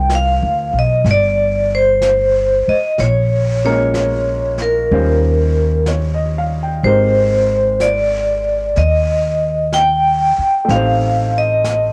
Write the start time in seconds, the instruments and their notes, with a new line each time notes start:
Already playing: upright bass C2, upright piano F3 C4 D#4 F4 A#4, vibraphone G5
0.09 brush sweep, snare, hi-hat pedal
0.15 vibraphone F5
0.42 upright bass D2
0.73 upright bass B1
0.79 vibraphone D#5
1.04 upright bass G1, brush sweep, snare
1.11 vibraphone D5
1.75 vibraphone C5
2.02 brush sweep, snare, hi-hat pedal
2.68 vibraphone D#5, muted upright bass stroke
2.98 upright bass A#1, vibraphone C#5, brush sweep, snare
3.65 upright piano G#3 A#3 C#4 F4 A#4, vibraphone C#5
3.94 brush sweep, snare, hi-hat pedal
4.58 snare
4.62 vibraphone A#4
4.90 upright bass D#2, upright piano G3 C#4 D#4 F4 C5, brush sweep
5.86 upright piano C#5, brush sweep, snare, hi-hat pedal
6.14 upright piano D#5
6.38 upright piano F5
6.63 upright piano G5
6.83 upright bass G#1, upright piano G#3 C4 D#4 G4 A#4, vibraphone C5, brush sweep
7.80 vibraphone D5, brush sweep, snare, hi-hat pedal
8.76 upright bass D#2, vibraphone D#5, brush sweep, snare
9.73 vibraphone G5, brush sweep, snare, hi-hat pedal
10.38 muted upright bass stroke
10.65 upright bass A1, upright piano A3 C4
10.69 upright piano D#4 G4, vibraphone F5, brush sweep, snare
10.75 upright piano C5
11.38 vibraphone D#5
11.64 brush sweep, snare, hi-hat pedal